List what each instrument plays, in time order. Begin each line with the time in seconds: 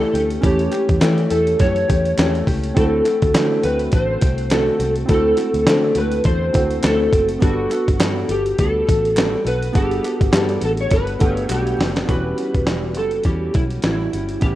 Already playing: nylon-string guitar E3 A3 C#4 G4, synth keys C#4 E4 G4 B4, electric slide guitar A4
0.14 fingered electric bass D2, nylon-string guitar A3 C#4 G4, closed hi-hat
0.30 closed hi-hat
0.41 fingered electric bass E2, nylon-string guitar E3 A3 C#4 G4, synth keys C#4 E4 G4, electric slide guitar G4, kick, closed hi-hat
0.46 synth keys C#5
0.59 closed hi-hat
0.71 nylon-string guitar A3 C#4 G4, clap, closed hi-hat
0.89 fingered electric bass E2, kick, closed hi-hat
1.00 nylon-string guitar E3 A3 C#4 G4, fingered electric bass E3, snare, clap, closed hi-hat
1.18 closed hi-hat
1.30 fingered electric bass E2, nylon-string guitar A3 C#4 G4, electric slide guitar A4, closed hi-hat
1.47 closed hi-hat
1.59 fingered electric bass F#2, nylon-string guitar E3 A3 C#4 G4, electric slide guitar C#5, kick, snare, closed hi-hat
1.76 closed hi-hat
1.88 fingered electric bass E2, nylon-string guitar A3 C#4 G4, kick, closed hi-hat
2.05 closed hi-hat
2.17 fingered electric bass E2, nylon-string guitar E3 A3 C#4 G4, snare, clap, closed hi-hat
2.35 closed hi-hat
2.46 fingered electric bass C#2, nylon-string guitar A3 C#4 G4, kick, open hi-hat
2.64 closed hi-hat
2.74 fingered electric bass D2, nylon-string guitar D3 A3, synth keys C4 E4 F#4, electric slide guitar A4, kick, closed hi-hat
2.78 nylon-string guitar C4 F#4, synth keys A4
3.05 nylon-string guitar A3 C4 F#4, clap, closed hi-hat
3.22 fingered electric bass D2, kick, closed hi-hat
3.34 fingered electric bass D3, nylon-string guitar D3 A3 C4 F#4, snare, clap, closed hi-hat
3.63 fingered electric bass D2, nylon-string guitar A3 C4 F#4, electric slide guitar B4, closed hi-hat
3.79 closed hi-hat
3.92 fingered electric bass A1, nylon-string guitar D3 A3 C4, electric slide guitar C5, kick, closed hi-hat
3.96 nylon-string guitar F#4
4.21 fingered electric bass C2, nylon-string guitar A3 C4 F#4, kick, closed hi-hat
4.38 closed hi-hat
4.50 nylon-string guitar D3 A3 C4 F#4, electric slide guitar A4, snare, clap, closed hi-hat
4.79 fingered electric bass C2, nylon-string guitar C4 F#4, closed hi-hat
4.83 nylon-string guitar A3
4.96 closed hi-hat
5.06 fingered electric bass D2, nylon-string guitar D3 A3, synth keys C4 E4 F#4, kick, closed hi-hat
5.10 nylon-string guitar C4 F#4, electric slide guitar A4, synth keys A4
5.36 nylon-string guitar C4 F#4, clap, closed hi-hat
5.40 nylon-string guitar A3
5.54 fingered electric bass D2, closed hi-hat
5.66 fingered electric bass D3, nylon-string guitar D3 A3 C4 F#4, snare, clap, closed hi-hat
5.95 fingered electric bass D2, nylon-string guitar C4 F#4, electric slide guitar B4, closed hi-hat
5.99 nylon-string guitar A3
6.12 closed hi-hat
6.24 fingered electric bass E2, nylon-string guitar D3 A3 C4 F#4, electric slide guitar C5, kick, closed hi-hat
6.53 fingered electric bass D2, synth keys C4 E4 F#4 A4, nylon-string guitar C4 F#4, kick, closed hi-hat
6.57 nylon-string guitar A3
6.71 closed hi-hat
6.83 fingered electric bass D2, nylon-string guitar D3 A3 C4 F#4, electric slide guitar A4, snare, clap, closed hi-hat
7.12 fingered electric bass F#1, nylon-string guitar A3 C4 F#4, kick, closed hi-hat
7.29 closed hi-hat
7.39 fingered electric bass G1, nylon-string guitar G3 B3 F#4, synth keys B3 D4 F#4, electric slide guitar F#4, kick, closed hi-hat
7.43 nylon-string guitar A4, synth keys A4
7.70 nylon-string guitar F#4 A4, clap, closed hi-hat
7.74 nylon-string guitar B3
7.88 fingered electric bass G1, kick, closed hi-hat
7.99 fingered electric bass G2, nylon-string guitar G3 B3 F#4 A4, snare, clap, closed hi-hat
8.28 fingered electric bass G1, nylon-string guitar B3 F#4 A4, electric slide guitar G4, closed hi-hat
8.46 closed hi-hat
8.58 fingered electric bass D2, nylon-string guitar G3 B3 F#4 A4, electric slide guitar A4, kick, closed hi-hat
8.87 fingered electric bass A1, nylon-string guitar F#4 A4, kick, closed hi-hat
8.91 nylon-string guitar B3
9.05 closed hi-hat
9.16 nylon-string guitar G3 B3 F#4 A4, snare, clap, closed hi-hat
9.44 fingered electric bass B1, nylon-string guitar B3 F#4 A4, electric slide guitar B4, closed hi-hat
9.62 closed hi-hat
9.73 fingered electric bass G1, nylon-string guitar G3 B3 F#4 A4, synth keys B3 D4 F#5, kick, closed hi-hat
9.77 electric slide guitar G4, synth keys G#4
9.83 synth keys A4
9.91 closed hi-hat
10.03 nylon-string guitar B3 F#4 A4, clap, closed hi-hat
10.21 fingered electric bass G1, kick, closed hi-hat
10.32 fingered electric bass G2, nylon-string guitar G3 B3 F#4 A4, snare, clap, closed hi-hat
10.49 closed hi-hat
10.61 fingered electric bass A1, nylon-string guitar B3 F#4 A4, electric slide guitar A4, closed hi-hat
10.77 electric slide guitar C#5, closed hi-hat
10.89 fingered electric bass G1, nylon-string guitar G3 B3 F#4 A4, kick, snare, closed hi-hat
10.93 electric slide guitar B4
11.07 closed hi-hat
11.19 fingered electric bass G1, synth keys A3 D4 A4 F#5, nylon-string guitar F#4 A4, electric slide guitar G4, kick, closed hi-hat
11.23 nylon-string guitar B3, synth keys B3
11.37 closed hi-hat
11.48 fingered electric bass B1, nylon-string guitar G3 B3 F#4 A4, electric slide guitar G4, clap, closed hi-hat
11.67 closed hi-hat
11.77 fingered electric bass F#1, nylon-string guitar F#4 A4, snare, open hi-hat
11.81 nylon-string guitar B3
11.96 snare, closed hi-hat
12.06 fingered electric bass E1, nylon-string guitar E3 G3 C#4 F#4, synth keys B3 C#4 F#4, kick, closed hi-hat
12.10 synth keys G4, electric slide guitar B4
12.36 nylon-string guitar C#4 F#4, closed hi-hat
12.40 nylon-string guitar G3
12.54 fingered electric bass E1, kick, closed hi-hat
12.65 nylon-string guitar E3 G3 C#4 F#4, snare, closed hi-hat
12.95 fingered electric bass F#1, nylon-string guitar C#4 F#4, electric slide guitar A4, closed hi-hat
12.99 nylon-string guitar G3
13.11 closed hi-hat
13.23 fingered electric bass E2, nylon-string guitar E3 G3 C#4 F#4, electric slide guitar G4, kick, closed hi-hat
13.54 fingered electric bass B1, nylon-string guitar G3 C#4 F#4, electric slide guitar E4, kick, closed hi-hat
13.70 closed hi-hat
13.82 fingered electric bass A1, nylon-string guitar E3 G3 C#4, electric slide guitar E4, snare, closed hi-hat
13.87 nylon-string guitar F#4
14.13 fingered electric bass G1, nylon-string guitar C#4 F#4, closed hi-hat
14.17 nylon-string guitar G3
14.29 closed hi-hat
14.40 fingered electric bass A1, nylon-string guitar A2 G3 C#4, synth keys B3 C#4 E4, electric slide guitar G4, kick, closed hi-hat
14.45 nylon-string guitar E4, synth keys G4